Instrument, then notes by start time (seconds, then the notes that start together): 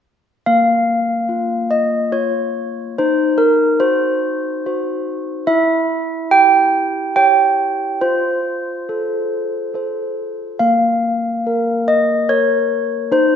handbells
0.46 A#3 F5
1.29 F4
1.71 D#5
2.12 F4 C#5
2.98 D#4 C5
3.38 A#4
3.80 F#4 C5
4.66 F#4 C5
5.47 E4 E5
6.31 G4 G5
7.16 G4 C#5 G5
8.01 F4 C5
8.89 A4
9.74 A4 C5
10.59 A#3 F5
11.47 A#4
11.88 D#5
12.29 A#4 C#5
13.12 D#4 C5